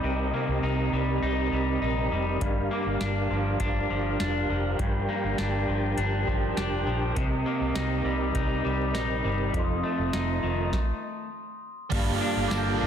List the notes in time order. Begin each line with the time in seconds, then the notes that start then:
Already playing: G3 A#3 C4 D#4 G4 A#4 D#5
0.04 C2 C3
0.34 A#3
0.48 C2
0.63 C2 D#4
0.93 C2 G3
1.22 C2 D#4
1.52 C2 G3
1.82 A#1 D#4
2.12 F1 G3
2.41 G1 G2 D4 F5, kick, closed hi-hat
2.71 A#3 D6
2.86 G1
3.01 G1 D4, snare, closed hi-hat
3.30 G1 F3
3.60 G1 D4, kick, closed hi-hat
3.90 G1 F3
4.20 F1 D4, snare, closed hi-hat
4.49 F1 F3
4.79 G1 G2 G5, kick, closed hi-hat
5.09 A#3
5.24 G1
5.38 G1 D4, snare, closed hi-hat
5.68 G1 F3
5.97 G1 D4, closed hi-hat
6.27 G1 F3, kick
6.57 F1 D4, snare, closed hi-hat
6.87 A#1 F3
7.16 C2 C3 C4 G4 D#5, kick, closed hi-hat
7.46 A#3
7.61 C2
7.76 C2 D#4, snare, closed hi-hat
8.05 C2 G3
8.35 C2 D#4, kick, closed hi-hat
8.65 C2 G3
8.94 A#1 D#4, snare, closed hi-hat
9.24 G1 G3
9.54 F1 F2 F4 A4, kick, closed hi-hat
9.59 C6
9.65 D#6
9.84 A3
9.99 F1
10.13 F1 D#4, snare, closed hi-hat
10.43 F1 D#3
10.73 kick, snare
11.90 G1 G2 G3 A#3 F4 G4 F5 A5, kick, crash, ride
11.95 A4
12.21 D4
12.36 G1
12.48 G1 A#3 D6, snare, ride, tambourine
12.53 F6
12.58 G6
12.81 G1 D4